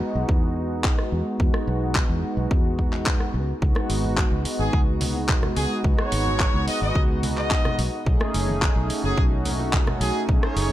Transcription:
0.00 G#3 B3 D#4 F#4, muted fingered electric bass stroke
0.15 B1
0.29 E2, kick
0.84 kick, clap
0.99 cross-stick
1.12 E2
1.39 E2 G#3 B3 D#4 F#4, kick
1.54 cross-stick
1.67 B1
1.95 kick, clap
2.09 E2
2.22 G#3 B3 D#4 F#4, muted fingered electric bass stroke
2.37 B1
2.51 E2, kick
2.79 kick
2.93 clap
3.06 kick, clap
3.20 cross-stick
3.34 C#2
3.61 C#2 G#3 B3 D#4 F#4, kick
3.75 cross-stick, high bongo
3.90 G#1, open hi-hat
4.04 high conga
4.18 kick, clap
4.32 C#2
4.45 G#3 B3 D#4 F#4, muted fingered electric bass stroke, open hi-hat
4.59 G#1 G#4
4.73 C#2, kick
5.01 open hi-hat, high bongo, low conga
5.15 high bongo
5.29 kick, clap, low conga
5.43 cross-stick, low conga
5.56 C#2 G#4, open hi-hat
5.83 C#2 G#3 B3 D#4 F#4, kick
5.98 C#5, cross-stick, high bongo
6.12 G#1, open hi-hat
6.27 high conga
6.40 kick, clap
6.54 C#2
6.67 G#3 B3 D#4 F#4 D#5, muted fingered electric bass stroke, open hi-hat
6.82 G#1 D#5
6.95 C#2, kick
7.23 open hi-hat, low conga
7.37 D#5, clap
7.51 kick, clap
7.65 cross-stick, low conga
7.79 B1, open hi-hat
8.06 B1 A3 C#4 D#4 G#4, kick
8.20 cross-stick, high bongo
8.34 F#1, open hi-hat
8.48 high conga
8.62 kick, clap
8.76 B1
8.89 A3 C#4 D#4 F#4, muted fingered electric bass stroke, open hi-hat
9.04 F#1 G#4
9.18 B1, kick
9.45 open hi-hat, high bongo, low conga
9.59 high bongo
9.73 kick, clap, low conga
9.87 cross-stick, low conga
10.01 B1 G#4, open hi-hat
10.28 B1 A3 C#4 D#4 G#4, kick
10.43 C#5, cross-stick, high bongo
10.56 F#1, open hi-hat

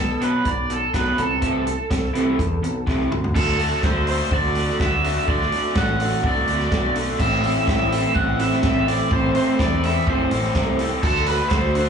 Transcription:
Already playing: B2 F#3 A4
0.22 B2 F#3 B3 D4 B4, closed hi-hat
0.44 B1 B2 F#3, muted overdriven electric guitar stroke, kick, closed hi-hat
0.48 D5
0.69 B2 F#3 A4, muted overdriven electric guitar stroke, closed hi-hat
0.94 B1 B2 F#3 B3 D4 B4, kick, snare, closed hi-hat
1.17 C2 C3 E3 A3 A4, muted overdriven electric guitar stroke, closed hi-hat
1.42 C3 E3 A3 E4, kick, closed hi-hat
1.66 C3 E3, muted overdriven electric guitar stroke, closed hi-hat
1.90 C2 C3 E3, muted overdriven electric guitar stroke, kick, snare, closed hi-hat
2.14 C2 C3 E3 A3 E4, closed hi-hat
2.38 E2 C3 E3, muted overdriven electric guitar stroke, kick, closed hi-hat
2.62 B1 C3 E3, muted overdriven electric guitar stroke, closed hi-hat
2.87 C2 C3 E3 A3 E4, kick, snare
3.11 D2 C3 E3, muted overdriven electric guitar stroke, mid tom
3.24 floor tom
3.35 D2 D3 F#3 A3 D4 F#4 A4 D5 A5, kick, crash
3.48 snare
3.58 D3 F#3 A3 D4 F#4 A4, open hi-hat
3.82 D2 D3 F#3 A3 D4 F#4 A4 C5, kick, snare
3.86 C6
4.06 D3 F#3 A3 D4 F#4 A4 C5 C6, open hi-hat
4.30 D2 D3 F#3 A3 D4 F#4 A4 D5, kick
4.35 D6
4.55 D3 F#3 A3 D4 F#4 A4, open hi-hat
4.69 snare
4.79 D2 D3 F#3 A3 D4 F#4 A4 E5, kick, snare
4.85 E6
5.04 D3 F#3 A3 D4 F#4 A4, open hi-hat
5.27 D2 D3 F#3 A3 D4 F#4 A4 D5 D6, kick
5.41 snare
5.51 D3 F#3 A3 D4 F#4 A4, open hi-hat
5.76 A1 D3 F#3 A3 D4 F#4 A4 F#5 F#6, kick, snare
5.99 D3 F#3 A3 D4 F#4 A4, open hi-hat
6.23 C2 D3 F#3 A3 D4 F#4 A4 D5 D6, kick
6.47 D2 D3 F#3 A3 D4 F#4 A4, open hi-hat
6.60 snare
6.71 B1 D3 F#3 A3 D4 F#4 A4, kick, snare
6.95 D3 F#3 A3 D4 F#4 A4, open hi-hat
7.19 A1 A2 E3 A3 C4 E4 A4 C5 E5 C6 E6, kick, crash
7.32 snare
7.44 A2 E3 A3 C4 E4 A4, open hi-hat
7.67 A1 A2 E3 A3 C4 E4 A4 E5 E6, kick, snare
7.91 A2 E3 A3 C4 E4 A4, open hi-hat
8.14 A1 A2 E3 A3 C4 E4 A4 F#5 F#6, kick
8.39 A2 E3 A3 C4 E4 A4 E5 E6, open hi-hat
8.52 snare
8.62 A1 A2 E3 A3 C4 E4 A4, kick, snare
8.86 A2 E3 A3 C4 E4 A4 D5 D6, open hi-hat
9.10 A1 A2 E3 A3 C4 E4 A4 C5 D5 C6, kick
9.35 A2 E3 A3 C4 E4 A4 C5 C6, open hi-hat
9.58 E2 A2 E3 A3 C4 E4 A4 D5 D6, kick, snare
9.83 A2 E3 A3 C4 E4 A4 E5 E6, open hi-hat
10.06 F#1 A2 E3 A3 C4 E4 A4 C5 C6, kick
10.30 A1 A2 E3 A3 C4 E4 A4, open hi-hat
10.44 snare
10.54 C2 A2 E3 A3 C4 E4 A4, kick, snare
10.78 A2 E3 A3 C4 E4 A4, open hi-hat
11.02 D2 D3 A3 D4 F#4 A4 F#5 A5 D6, kick, crash
11.16 snare
11.26 D3 A3 D4 F#4 A4 B4 B5, open hi-hat
11.49 D2 D3 A3 D4 F#4 A4 C5 C6, kick, snare, clap
11.74 D3 A3 D4 F#4 A4, open hi-hat

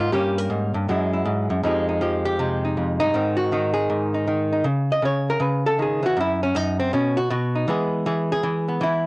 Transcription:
Already playing: D#3 A#3 D#4
0.00 G#2 F4
0.12 G2 G3 A#3 C#4 G4
0.38 A#4
0.50 G#2
0.74 G2
0.89 F#2 F#3 G#3 E4
1.13 E4
1.26 G#2
1.50 F#2
1.64 F2 F3 G#3 D#4 G4
1.89 D#4
2.01 F3 G4
2.25 G4
2.39 C3 G#3
2.65 D#4
2.77 F2
3.00 G2 D#4
3.14 G#2 D#3 C4
3.37 F#4
3.52 D#3 D#4
3.74 G#4
3.90 G#2
4.14 D#4
4.27 D#3
4.52 D#4
4.64 C#3
4.92 D#5
5.02 C#3 C#5
5.30 A#4
5.40 C#3 B4
5.66 A4
5.79 D#3 G#4
6.03 E3 F#4
6.17 F#2 E4
6.43 C#4
6.55 F#2 D#4
6.80 C4
6.93 B2 C#4
7.17 F#4
7.30 B2 F#4
7.55 D#4
7.68 E3 G#3 B3 G#4
8.06 E3 G#4
8.32 G#4
8.43 E3
8.68 B3
8.81 E3 E4

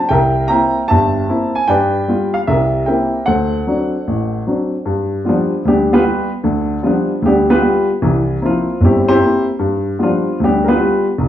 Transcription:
0.09 C2 A#4 E5 G5
0.48 A#3 C4 E4 E5 G5 A#5
0.88 G1 G2 E5 A5
1.29 A#3 C4 E4
1.55 G#5
1.68 G2 B4 D5 G5
2.08 G3 B3 F4
2.34 F5
2.47 C2 G4 A#4 E5
2.86 A#3 C4 E4 A#4 E5 G5
3.26 D2 A4 C5 F#5
3.67 F#3 C4 D4
4.07 A1
4.47 F#3 C4 D4
4.86 G2
5.25 G3 B3 F4
5.29 F3 B3 D4
5.65 D2 G3 B3 D4 G4
5.93 B3 F4 G4 B4
6.04 G3 B3 F4
6.44 D2 D3
6.83 F3 G3 B3 D4 F4
7.22 D2 G4
7.26 G3 B3 D4
7.50 B3 F4 G4 B4
7.62 G3 B3 F4
8.02 C2 E3
8.41 A#3 C4 E4
8.46 F3 F4
8.81 G1 G3 C4 G4
8.85 E4
9.08 C4 E4 G4 C5
9.20 A#3 C4 E4
9.59 G2
9.99 G3 B3 F4
10.03 F3 D4
10.40 D2
10.44 G3 B3 D4 G4
10.68 B3 F4 G4 B4
10.80 G3 B3 F4
11.18 C2

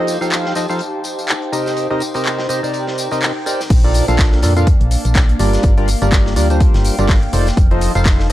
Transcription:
Already playing: F3 D#4 F4 G4 A4 C5 D#5 F5 G5
0.01 A5
0.07 closed hi-hat, tambourine
0.21 F3 D#4 F4 A4 C5 F5, tambourine
0.31 clap, closed hi-hat, tambourine
0.46 snare
0.55 F3 D#4 F4 A4 C5 D#5, snare, closed hi-hat, tambourine
0.69 F3 D#4 F4 A4 C5 F5, tambourine
0.70 tambourine
0.79 closed hi-hat, tambourine
1.04 closed hi-hat, tambourine
1.18 tambourine
1.28 clap, closed hi-hat, tambourine
1.42 closed hi-hat
1.52 C3 D#4 G4 A#4 C5 D#5, closed hi-hat, tambourine
1.66 snare, tambourine
1.77 closed hi-hat, tambourine
1.90 C3 D#4 G4 A#4 C5 D#5
2.00 closed hi-hat, tambourine
2.14 C3 D#4 G4 A#4 C5 D#5 G5, tambourine
2.25 A#5, clap, closed hi-hat, tambourine
2.39 snare
2.49 C3 D#4 G4 A#4 C5 D#5, closed hi-hat, tambourine
2.63 C3 D#4 G4 A#4 C5 D5, tambourine
2.73 closed hi-hat, tambourine
2.87 snare
2.98 closed hi-hat, tambourine
3.11 C3 D#4 G4 A#4 C5 D#5, tambourine
3.22 clap, open hi-hat, tambourine
3.46 D#4 G4 A#4 C5 D5, closed hi-hat, tambourine
3.60 snare, tambourine
3.70 A#1 D4, kick, closed hi-hat, crash, tambourine
3.82 A#2 A#3 D4 F4 A4 A#4 D5 F5, closed hi-hat
3.94 closed hi-hat, open hi-hat, tambourine
4.08 A#1 A#2 D4 F4 A4 A#4 F5, closed hi-hat, tambourine
4.18 kick, snare, clap, closed hi-hat, tambourine
4.32 snare
4.41 F2 A#2 D4 F4 A4 A#4 D5 A5, snare, closed hi-hat, open hi-hat, tambourine
4.57 A#2 D4 F4 A4 A#4 F5, closed hi-hat, tambourine
4.67 kick, closed hi-hat, tambourine
4.81 A#1, closed hi-hat
4.91 closed hi-hat, open hi-hat, tambourine
5.05 A#1, closed hi-hat, tambourine
5.15 kick, snare, clap, closed hi-hat, tambourine
5.29 closed hi-hat
5.39 G1 G3 D4 F4 G4 A#4 D5, closed hi-hat, open hi-hat, tambourine
5.53 snare, closed hi-hat, tambourine
5.63 G1, kick, closed hi-hat, tambourine
5.78 G3 D4 F4 G4 A#4 D5, closed hi-hat
5.88 G5, closed hi-hat, open hi-hat, tambourine
6.02 G1 G3 D4 F4 G4 A#4 D5, closed hi-hat, tambourine
6.12 kick, snare, clap, closed hi-hat, tambourine
6.26 snare
6.36 D2 G3 D4 F4 G4 A#4 D5, closed hi-hat, open hi-hat, tambourine
6.50 G3 D4 F4 G4 A#4 C5, closed hi-hat, tambourine
6.60 kick, closed hi-hat, tambourine
6.74 G1, snare, closed hi-hat
6.85 closed hi-hat, open hi-hat, tambourine
6.98 G1 G3 D4 F4 G4 A#4 D5, closed hi-hat, tambourine
7.09 kick, snare, clap, closed hi-hat, open hi-hat, tambourine
7.23 closed hi-hat
7.33 F1 F3 D#4 F4 A4 C5 D5, closed hi-hat, open hi-hat, tambourine
7.38 C5
7.47 snare, closed hi-hat, tambourine
7.57 F1, kick, closed hi-hat, tambourine
7.67 F3 D#4 F4 A4 C5 D#5 A5, closed hi-hat
7.81 closed hi-hat, open hi-hat, tambourine
7.95 F1 F3 D#4 F4 A4 C5 F5, closed hi-hat, tambourine
8.06 kick, snare, clap, closed hi-hat
8.20 snare

